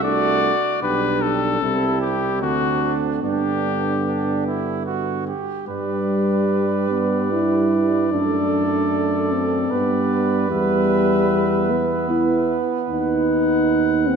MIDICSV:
0, 0, Header, 1, 6, 480
1, 0, Start_track
1, 0, Key_signature, 1, "major"
1, 0, Tempo, 798935
1, 493, Time_signature, 3, 2, 24, 8
1, 1454, Tempo, 817439
1, 4334, Tempo, 793651
1, 8468, End_track
2, 0, Start_track
2, 0, Title_t, "Trumpet"
2, 0, Program_c, 0, 56
2, 21, Note_on_c, 0, 74, 76
2, 486, Note_off_c, 0, 74, 0
2, 496, Note_on_c, 0, 71, 68
2, 733, Note_on_c, 0, 69, 62
2, 742, Note_off_c, 0, 71, 0
2, 1206, Note_off_c, 0, 69, 0
2, 1210, Note_on_c, 0, 67, 51
2, 1448, Note_off_c, 0, 67, 0
2, 1455, Note_on_c, 0, 66, 59
2, 1758, Note_off_c, 0, 66, 0
2, 1934, Note_on_c, 0, 67, 59
2, 2873, Note_off_c, 0, 67, 0
2, 3372, Note_on_c, 0, 74, 46
2, 6233, Note_off_c, 0, 74, 0
2, 6259, Note_on_c, 0, 76, 49
2, 7509, Note_off_c, 0, 76, 0
2, 7697, Note_on_c, 0, 78, 50
2, 8468, Note_off_c, 0, 78, 0
2, 8468, End_track
3, 0, Start_track
3, 0, Title_t, "Trumpet"
3, 0, Program_c, 1, 56
3, 22, Note_on_c, 1, 66, 56
3, 487, Note_off_c, 1, 66, 0
3, 497, Note_on_c, 1, 67, 44
3, 798, Note_off_c, 1, 67, 0
3, 975, Note_on_c, 1, 64, 49
3, 1456, Note_on_c, 1, 62, 44
3, 1465, Note_off_c, 1, 64, 0
3, 1923, Note_off_c, 1, 62, 0
3, 1927, Note_on_c, 1, 62, 40
3, 2354, Note_off_c, 1, 62, 0
3, 2411, Note_on_c, 1, 62, 43
3, 2636, Note_off_c, 1, 62, 0
3, 2653, Note_on_c, 1, 64, 45
3, 2884, Note_off_c, 1, 64, 0
3, 2888, Note_on_c, 1, 66, 47
3, 3125, Note_off_c, 1, 66, 0
3, 3128, Note_on_c, 1, 67, 41
3, 3365, Note_off_c, 1, 67, 0
3, 3368, Note_on_c, 1, 71, 41
3, 4791, Note_off_c, 1, 71, 0
3, 4817, Note_on_c, 1, 69, 41
3, 5776, Note_on_c, 1, 71, 48
3, 5785, Note_off_c, 1, 69, 0
3, 8468, Note_off_c, 1, 71, 0
3, 8468, End_track
4, 0, Start_track
4, 0, Title_t, "French horn"
4, 0, Program_c, 2, 60
4, 18, Note_on_c, 2, 62, 45
4, 321, Note_off_c, 2, 62, 0
4, 497, Note_on_c, 2, 62, 50
4, 971, Note_on_c, 2, 60, 45
4, 980, Note_off_c, 2, 62, 0
4, 1449, Note_off_c, 2, 60, 0
4, 1453, Note_on_c, 2, 60, 44
4, 1932, Note_on_c, 2, 59, 47
4, 1941, Note_off_c, 2, 60, 0
4, 3184, Note_off_c, 2, 59, 0
4, 3368, Note_on_c, 2, 55, 66
4, 4065, Note_off_c, 2, 55, 0
4, 4091, Note_on_c, 2, 59, 48
4, 4329, Note_off_c, 2, 59, 0
4, 4332, Note_on_c, 2, 64, 66
4, 4819, Note_on_c, 2, 62, 60
4, 4828, Note_off_c, 2, 64, 0
4, 5539, Note_on_c, 2, 60, 50
4, 5548, Note_off_c, 2, 62, 0
4, 5777, Note_on_c, 2, 59, 61
4, 5786, Note_off_c, 2, 60, 0
4, 6254, Note_off_c, 2, 59, 0
4, 6258, Note_on_c, 2, 55, 70
4, 6983, Note_on_c, 2, 59, 56
4, 6992, Note_off_c, 2, 55, 0
4, 7220, Note_off_c, 2, 59, 0
4, 7223, Note_on_c, 2, 64, 62
4, 7527, Note_off_c, 2, 64, 0
4, 7706, Note_on_c, 2, 63, 80
4, 8420, Note_on_c, 2, 60, 63
4, 8429, Note_off_c, 2, 63, 0
4, 8468, Note_off_c, 2, 60, 0
4, 8468, End_track
5, 0, Start_track
5, 0, Title_t, "Trombone"
5, 0, Program_c, 3, 57
5, 16, Note_on_c, 3, 57, 50
5, 320, Note_off_c, 3, 57, 0
5, 494, Note_on_c, 3, 55, 48
5, 947, Note_off_c, 3, 55, 0
5, 974, Note_on_c, 3, 55, 45
5, 1453, Note_on_c, 3, 50, 43
5, 1462, Note_off_c, 3, 55, 0
5, 1925, Note_off_c, 3, 50, 0
5, 1929, Note_on_c, 3, 50, 41
5, 3159, Note_off_c, 3, 50, 0
5, 3376, Note_on_c, 3, 55, 44
5, 4795, Note_off_c, 3, 55, 0
5, 4817, Note_on_c, 3, 57, 42
5, 5780, Note_on_c, 3, 55, 44
5, 5789, Note_off_c, 3, 57, 0
5, 6248, Note_off_c, 3, 55, 0
5, 6252, Note_on_c, 3, 59, 49
5, 8468, Note_off_c, 3, 59, 0
5, 8468, End_track
6, 0, Start_track
6, 0, Title_t, "Tuba"
6, 0, Program_c, 4, 58
6, 0, Note_on_c, 4, 36, 51
6, 302, Note_off_c, 4, 36, 0
6, 493, Note_on_c, 4, 35, 47
6, 946, Note_off_c, 4, 35, 0
6, 969, Note_on_c, 4, 36, 52
6, 1455, Note_on_c, 4, 38, 45
6, 1464, Note_off_c, 4, 36, 0
6, 1928, Note_off_c, 4, 38, 0
6, 1931, Note_on_c, 4, 43, 42
6, 3160, Note_off_c, 4, 43, 0
6, 3374, Note_on_c, 4, 43, 45
6, 4816, Note_on_c, 4, 42, 46
6, 4825, Note_off_c, 4, 43, 0
6, 5772, Note_off_c, 4, 42, 0
6, 5776, Note_on_c, 4, 43, 49
6, 6254, Note_on_c, 4, 40, 48
6, 6263, Note_off_c, 4, 43, 0
6, 7531, Note_off_c, 4, 40, 0
6, 7700, Note_on_c, 4, 39, 47
6, 8468, Note_off_c, 4, 39, 0
6, 8468, End_track
0, 0, End_of_file